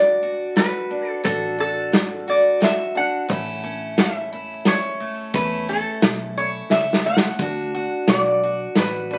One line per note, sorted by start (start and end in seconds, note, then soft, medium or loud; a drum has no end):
0.00 0.64 D2 medium
0.00 0.49 A3 medium
0.00 0.89 D4 medium
0.00 0.22 F#4 medium
0.00 0.58 D5 medium
0.23 0.55 F#4 medium
0.56 1.17 A2 medium
0.56 1.20 F#4 medium
0.56 1.10 B4 medium
0.56 snare medium
0.56 closed hi-hat medium
0.91 1.20 D4 medium
1.10 1.24 A4 medium
1.24 2.70 A1 medium
1.24 1.85 D3 medium
1.24 2.94 D4 soft
1.24 1.57 F#4 medium
1.24 1.59 A4 medium
1.24 kick loud
1.24 closed hi-hat medium
1.58 2.26 F#4 medium
1.58 2.30 A4 medium
1.92 2.54 A3 medium
1.92 snare medium
1.92 closed hi-hat medium
2.28 2.60 F#4 medium
2.28 2.63 D5 medium
2.60 3.22 A2 medium
2.60 3.25 F#4 medium
2.60 2.97 E5 medium
2.60 snare medium
2.60 closed hi-hat medium
2.95 3.25 D4 medium
2.95 3.99 F#5 medium
3.28 4.74 A1 medium
3.28 3.90 A2 medium
3.28 5.00 A3 medium
3.28 3.63 C#4 medium
3.28 4.32 E4 medium
3.28 kick loud
3.28 closed hi-hat medium
3.63 4.66 C#4 medium
3.98 4.59 E3 medium
3.98 4.69 E5 medium
3.98 snare medium
3.98 closed hi-hat medium
4.33 5.35 E4 medium
4.65 5.27 E2 medium
4.65 5.30 C#4 medium
4.65 5.35 C#5 medium
4.65 snare medium
4.65 closed hi-hat medium
5.00 5.34 A3 medium
5.34 5.82 E2 medium
5.34 5.95 A2 medium
5.34 7.05 A3 medium
5.34 5.67 C#4 medium
5.34 6.37 E4 medium
5.34 5.67 B4 medium
5.34 kick loud
5.34 closed hi-hat medium
5.69 6.71 C#4 medium
5.69 6.39 A4 medium
6.02 6.61 B1 medium
6.02 6.64 E3 medium
6.02 snare medium
6.02 closed hi-hat medium
6.37 7.40 E4 medium
6.37 6.72 C#5 medium
6.70 7.29 C#2 medium
6.70 7.32 E2 medium
6.70 7.35 C#4 medium
6.70 7.06 E5 medium
6.70 snare medium
6.93 snare medium
7.06 7.36 A3 medium
7.06 8.04 F#5 medium
7.17 snare medium
7.39 7.87 D2 medium
7.39 8.01 D3 medium
7.39 9.10 D4 soft
7.39 7.73 F#4 medium
7.39 kick loud
7.39 closed hi-hat medium
7.74 8.42 F#4 medium
8.08 8.66 B1 medium
8.08 8.69 A3 medium
8.08 8.79 D5 medium
8.08 snare medium
8.08 closed hi-hat medium
8.43 8.76 F#4 medium
8.75 9.18 A1 medium
8.75 9.18 A2 medium
8.75 9.18 F#4 medium
8.75 snare medium
8.75 closed hi-hat medium
8.80 9.12 B4 medium
9.11 9.18 D4 medium
9.11 9.18 B4 medium